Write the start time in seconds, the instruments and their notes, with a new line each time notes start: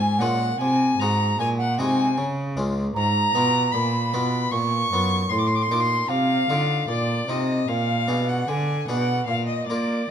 Already playing: harpsichord G#2, cello G#2, flute G#5, violin G#5
0.19 cello A#2, harpsichord A#2 G#3 C#4 F4, flute F#5, violin F#5
0.59 cello C3, harpsichord C3, flute G#5, violin G#5
0.98 cello G#2, harpsichord G#2 G#3 D#4, flute A#5, violin A#5
1.02 harpsichord F#4
1.39 cello A#2, harpsichord A#2, flute G#5, violin G#5
1.58 flute F#5, violin F#5
1.78 cello C3, harpsichord C3 G#3 D#4 F#4, flute G#5, violin G#5
2.18 cello C#3, harpsichord C#3
2.56 cello C#2, harpsichord C#2 G#3 C#4 F4
2.95 cello G#2, harpsichord G#2, flute A#5, violin A#5
3.35 cello B2, harpsichord B2 B3 F4
3.72 harpsichord A#2, cello A#2, violin B5, flute B5
4.13 cello B2, harpsichord B2 B3 F4
4.52 harpsichord A#2, cello A#2, violin C#6, flute C#6
4.91 cello F#2, harpsichord F#2 B3 F4
5.29 cello A2, harpsichord A2, violin C6, flute C6
5.38 violin D6
5.47 violin C6
5.55 violin D6
5.62 violin C6
5.70 cello A#2, harpsichord A#2 D#4 F4, violin D6
5.80 violin C6
6.09 cello C3, harpsichord C3, flute F5, violin F5
6.49 cello D3, harpsichord D3 D#4 F4
6.88 harpsichord A#2, cello A#2, violin D5, flute D5
7.28 cello C3, harpsichord C3 D#4 F4, flute D#5, violin D#5
7.67 cello A#2, harpsichord A#2, violin F5, flute F5
8.08 harpsichord B2 D4 G#4, cello B2
8.29 flute F#5, violin F#5
8.47 cello D3, harpsichord D3, violin G#5, flute G#5
8.88 cello B2, harpsichord B2 D4 G#4, violin F#5, flute F#5
9.26 cello A#2, harpsichord A#2, violin F5, flute F5
9.46 violin D#5, flute D#5
9.67 cello A#3, harpsichord A#3 F4, violin D5, flute D5
9.71 harpsichord A#4